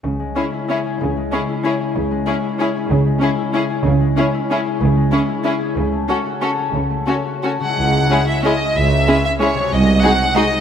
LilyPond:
<<
  \new Staff \with { instrumentName = "Violin section" } { \time 3/4 \key cis \minor \tempo 4 = 186 r4 gis'4 gis'4 | r4 gis'4 gis'4 | r4 gis'4 gis'4 | r4 gis'4 gis'4 |
r4 gis'4 gis'4 | r4 gis'4 gis'4 | r4 a'4 a'4 | r4 a'4 a'8 fis''8~ |
fis''4. e''8 dis''4 | e''4. e''8 cis''4 | dis''4 fis''4 dis''4 | }
  \new Staff \with { instrumentName = "Violin section" } { \time 3/4 \key cis \minor r4 e'4 e'4 | r4 e'4 e'4 | r4 e'4 e'4 | r4 e'4 e'4 |
r4 e'4 e'4 | r4 e'4 e'4 | r4 fis'4 fis'4 | r4 fis'4 fis'4 |
r4 <e' gis'>4 <e' gis'>4 | r4 <e' gis'>4 <e' gis'>4 | r4 <fis' gis'>4 <fis' gis'>4 | }
  \new Staff \with { instrumentName = "Harp" } { \time 3/4 \key cis \minor << { cis8 gis8 cis'8 e'8 gis'8 cis'8 | cis8 gis8 cis'8 e'8 gis'8 cis'8 | cis8 gis8 cis'8 e'8 gis'8 cis'8 | cis8 gis8 cis'8 e'8 gis'8 cis'8 |
cis8 gis8 cis'8 e'8 gis'8 cis'8 | cis8 gis8 cis'8 e'8 gis'8 cis'8 | cis8 a8 cis'8 fis'8 a'8 cis'8 | cis8 a8 cis'8 fis'8 a'8 cis'8~ |
cis'2.~ | cis'2. | r2. | } \\ { r2. | r2. | r2. | r2. |
r2. | r2. | r2. | r2. |
<cis gis e' gis'>2.~ | <cis gis e' gis'>2. | <bis, gis fis' gis'>2. | } >> }
  \new Staff \with { instrumentName = "Viola section" } { \time 3/4 \key cis \minor r4 cis'4 cis'4 | r4 cis'4 cis'4 | r4 cis'4 cis'4 | r4 cis'4 cis'4 |
r4 cis'4 cis'4 | r4 cis'4 cis'4 | r4 cis'4 cis'4 | r4 cis'4 cis'4 |
r4 <gis cis'>4 <gis cis'>4 | r4 <gis cis'>4 <gis cis'>4 | r4 <gis dis'>4 <gis dis'>4 | }
  \new Staff \with { instrumentName = "Cello section" } { \clef bass \time 3/4 \key cis \minor cis4 r2 | cis4 r2 | cis4 r2 | cis4 r2 |
cis4 r2 | cis4 r2 | cis4 r2 | cis4 r2 |
cis,4 r2 | cis,4 r2 | bis,,4 r2 | }
  \new Staff \with { instrumentName = "Double bass section" } { \clef bass \time 3/4 \key cis \minor cis,4 r2 | cis,4 r2 | cis,4 r2 | cis,4 r2 |
cis,4 r2 | cis,4 r2 | cis,4 r2 | cis,4 r2 |
cis,4 r2 | cis,4 r2 | bis,,4 r2 | }
>>